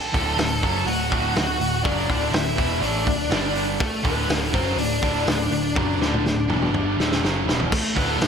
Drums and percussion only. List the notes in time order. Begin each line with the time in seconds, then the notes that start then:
0.14 kick, open hi-hat
0.38 snare, open hi-hat
0.63 kick, open hi-hat
0.87 open hi-hat
1.12 kick, open hi-hat
1.36 snare, open hi-hat
1.61 open hi-hat
1.85 kick, open hi-hat
2.10 kick, open hi-hat
2.33 snare, open hi-hat
2.58 kick, open hi-hat
2.82 open hi-hat
3.06 kick, open hi-hat
3.31 snare, open hi-hat
3.55 open hi-hat
3.80 kick, open hi-hat
4.05 kick, open hi-hat
4.29 snare, open hi-hat
4.54 kick, open hi-hat
4.78 open hi-hat
5.02 kick, open hi-hat
5.27 snare, open hi-hat
5.52 open hi-hat
5.75 kick, high tom
6.02 snare
6.14 high tom
6.26 snare
6.50 mid tom
6.62 mid tom
6.74 mid tom
7.00 snare
7.12 snare
7.25 snare
7.49 snare
7.60 floor tom
7.72 kick, crash
7.97 kick, open hi-hat
8.21 snare, open hi-hat